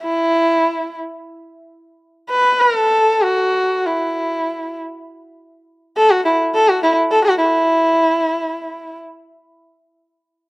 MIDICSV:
0, 0, Header, 1, 2, 480
1, 0, Start_track
1, 0, Tempo, 500000
1, 10071, End_track
2, 0, Start_track
2, 0, Title_t, "Sarangi"
2, 0, Program_c, 0, 110
2, 26, Note_on_c, 0, 64, 95
2, 929, Note_off_c, 0, 64, 0
2, 2208, Note_on_c, 0, 71, 89
2, 2504, Note_on_c, 0, 69, 88
2, 2519, Note_off_c, 0, 71, 0
2, 3111, Note_on_c, 0, 66, 85
2, 3125, Note_off_c, 0, 69, 0
2, 3707, Note_on_c, 0, 64, 72
2, 3722, Note_off_c, 0, 66, 0
2, 4583, Note_off_c, 0, 64, 0
2, 5731, Note_on_c, 0, 69, 89
2, 5862, Note_on_c, 0, 66, 81
2, 5876, Note_off_c, 0, 69, 0
2, 5993, Note_off_c, 0, 66, 0
2, 5998, Note_on_c, 0, 64, 70
2, 6127, Note_off_c, 0, 64, 0
2, 6283, Note_on_c, 0, 69, 93
2, 6418, Note_on_c, 0, 66, 82
2, 6433, Note_off_c, 0, 69, 0
2, 6552, Note_off_c, 0, 66, 0
2, 6557, Note_on_c, 0, 64, 74
2, 6680, Note_off_c, 0, 64, 0
2, 6827, Note_on_c, 0, 69, 88
2, 6949, Note_off_c, 0, 69, 0
2, 6958, Note_on_c, 0, 66, 81
2, 7081, Note_off_c, 0, 66, 0
2, 7089, Note_on_c, 0, 64, 88
2, 8614, Note_off_c, 0, 64, 0
2, 10071, End_track
0, 0, End_of_file